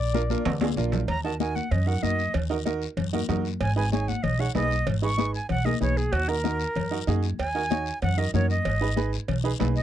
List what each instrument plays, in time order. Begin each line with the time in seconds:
Already playing: upright bass A#1, trombone D5
0.14 upright piano D4 F4 A#4, high conga, short guiro
0.30 upright piano D4 F4 A#4, high conga, short guiro
0.45 upright bass D2, cowbell, high conga, low conga, high timbale, long guiro
0.61 upright piano D4 F4 G#4, high conga, high timbale
0.76 upright bass A#1, upright piano D4 F4 A#4, low conga, short guiro
0.92 low conga, low timbale, short guiro
1.08 upright bass D#2, flute A#5, cowbell, high conga, low conga, long guiro
1.24 upright piano D#4 F#4 A#4, flute A5
1.40 upright piano D#4 F#4 A#4, flute G#5, high conga, short guiro
1.55 flute F#5, high conga, short guiro
1.71 upright bass F#2, flute D#5, cowbell, high conga, low conga, long guiro
1.87 upright piano D#4 F#4 A#4, flute F#5
2.03 upright bass F#2, upright piano D#4 F#4 A#4, flute D#5, high conga, short guiro
2.19 short guiro
2.34 upright bass D#2, cowbell, high conga, low conga, long guiro
2.50 upright piano D#4 F#4 A#4
2.65 upright piano D#4 F#4 A#4, high conga, short guiro
2.82 short guiro
2.97 upright bass F#2, cowbell, high conga, low conga, long guiro
3.13 upright piano D#4 F#4 A#4, high conga
3.29 upright bass F#2, upright piano D#4 F#4 A#4, high conga, low conga, low timbale, short guiro
3.45 short guiro
3.61 upright bass G#1, flute G#5, cowbell, high conga, low conga, long guiro
3.76 upright piano D#4 G#4 B4, flute G#5
3.92 upright piano D#4 G#4 C#5, flute G#5, high conga, short guiro
4.08 flute F#5, high conga, short guiro
4.23 upright bass B1, flute D#5, cowbell, high conga, low conga, long guiro
4.39 upright piano D#4 G#4 C#5, flute F#5
4.55 upright bass B1, upright piano D#4 G#4 B4, flute D#5, high conga, low timbale, short guiro
4.71 short guiro
4.87 upright bass G#1, cowbell, high conga, low conga, long guiro
5.02 upright piano D#4 G#4 B4, flute C#6
5.18 upright piano D#4 G#4 B4, high conga, short guiro
5.34 flute G#5, short guiro
5.49 upright bass B1, flute F#5, cowbell, high conga, low conga, long guiro
5.65 upright piano D#4 G#4 A#4, flute D#5, high conga
5.81 upright bass B1, upright piano D#4 G#4 B4, flute C#5, high conga, low conga, short guiro
5.97 flute G#4, short guiro
6.12 upright bass D#2, flute F#4, cowbell, high conga, long guiro
6.28 upright piano D#4 F#4 A#4, flute A#4
6.44 upright piano D#4 F#4 A#4, high conga, short guiro
6.60 short guiro
6.75 upright bass F#2, cowbell, high conga, low conga, long guiro
6.91 upright piano D#4 F#4 A#4
7.07 upright bass F#2, upright piano D#4 F#4 G#4, high conga, short guiro
7.23 short guiro
7.39 upright bass D#2, flute G#5, cowbell, high conga, long guiro
7.55 upright piano D#4 F#4 A#4
7.70 upright piano D#4 F#4 C#5, high conga, short guiro
7.86 short guiro
8.02 upright bass F#2, flute F#5, cowbell, high conga, low conga, long guiro
8.17 upright piano D#4 F#4 A#4, flute D#5
8.34 upright bass F#2, upright piano D#4 F#4 A#4, flute C#5, high conga, low conga, short guiro
8.50 flute D#5, short guiro
8.65 upright bass G#1, cowbell, high conga, low conga, long guiro
8.81 upright piano D#4 G#4 B4
8.96 upright piano D#4 G#4 B4, high conga, short guiro
9.13 short guiro
9.28 upright bass B1, cowbell, high conga, low conga, long guiro
9.44 upright piano D#4 G#4 B4
9.59 upright bass B1, upright piano D#4 G#4 B4, high conga, low timbale, short guiro
9.76 flute D#5, short guiro